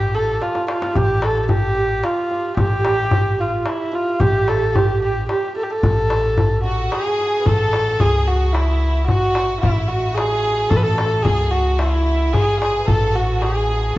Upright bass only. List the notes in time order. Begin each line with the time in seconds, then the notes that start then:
Already playing: A1
0.96 A1
2.57 A1
4.21 A1
5.83 A1
7.46 A1
8.01 C#2
9.09 A1
9.64 A1
10.71 A1
11.26 C#2
12.34 A1
12.88 A1